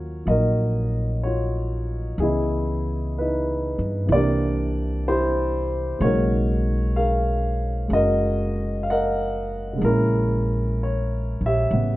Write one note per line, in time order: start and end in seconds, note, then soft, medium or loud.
0.00 0.22 D#2 medium
0.00 2.18 D#3 soft
0.00 0.24 F#3 soft
0.00 2.19 C#4 soft
0.00 1.20 F4 soft
0.00 0.30 F#4 soft
0.00 0.30 A#4 medium
0.00 0.30 C#5 medium
0.00 2.19 F5 soft
0.25 2.15 A#1 medium
0.25 2.18 F#3 soft
0.25 2.19 A#3 soft
0.25 2.20 D#4 soft
0.25 1.26 D#5 medium
0.30 1.24 F#4 medium
0.30 2.16 A#4 medium
1.23 2.16 F4 medium
1.23 2.16 F#4 medium
1.23 1.99 C#5 medium
2.18 3.74 C#2 medium
2.18 4.10 C#3 soft
2.18 4.07 E3 soft
2.18 3.18 G#4 medium
2.22 4.11 B3 soft
2.22 3.19 E4 medium
2.22 4.11 D#5 soft
3.18 4.09 D#4 soft
3.18 4.09 E4 soft
3.18 4.07 B4 medium
3.79 4.07 G2 medium
4.06 5.94 C2 medium
4.06 5.97 C3 soft
4.06 5.98 E3 soft
4.12 6.00 A#3 soft
4.12 6.02 D4 medium
4.12 5.07 G4 medium
4.12 5.97 A#4 medium
4.12 5.08 D5 medium
5.08 5.97 E4 medium
5.08 5.97 G4 medium
5.08 5.81 C5 medium
5.99 7.86 B1 medium
5.99 9.72 C#3 soft
5.99 7.86 G#3 soft
5.99 9.80 A#3 soft
5.99 6.91 C#5 medium
6.03 9.83 D#4 medium
6.03 7.88 F#4 medium
6.03 6.96 A#4 medium
6.96 8.82 G#4 soft
6.96 7.93 A#4 medium
6.96 7.86 F5 medium
7.88 9.77 F#1 medium
7.88 9.76 G#3 soft
7.88 9.81 C#4 soft
7.93 9.79 F#4 medium
7.93 8.90 A#4 medium
7.93 8.78 D#5 medium
8.83 8.86 F5 medium
8.90 9.80 A#4 medium
8.90 9.79 D#5 medium
8.90 9.79 F#5 medium
9.73 11.69 C#3 soft
9.77 11.38 A#1 medium
9.77 11.71 G#3 soft
9.81 11.73 A#3 soft
9.81 11.75 E4 medium
9.81 10.82 A#4 medium
9.86 11.72 C#4 medium
10.83 11.40 C#5 medium
11.41 11.70 A#1 medium
11.46 11.97 G4 medium
11.46 11.97 C#5 soft
11.46 11.97 E5 medium
11.71 11.97 A1 medium
11.71 11.97 C#3 soft
11.71 11.97 G3 soft
11.71 11.97 B3 soft
11.71 11.97 F#5 medium